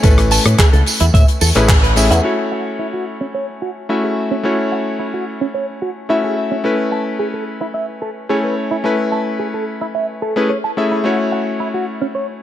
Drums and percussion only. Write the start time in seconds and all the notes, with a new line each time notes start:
0.03 kick, closed hi-hat, tambourine
0.18 cross-stick, closed hi-hat, tambourine
0.31 open hi-hat, tambourine
0.46 cross-stick, closed hi-hat, tambourine
0.58 kick, clap, closed hi-hat, tambourine
0.73 closed hi-hat, tambourine
0.86 open hi-hat, tambourine
1.00 closed hi-hat, tambourine
1.14 kick, closed hi-hat, tambourine
1.28 closed hi-hat, tambourine
1.41 open hi-hat, tambourine
1.55 clap, closed hi-hat, tambourine
1.69 kick, clap, closed hi-hat, tambourine
1.84 closed hi-hat, tambourine
1.96 open hi-hat, tambourine
2.11 closed hi-hat, tambourine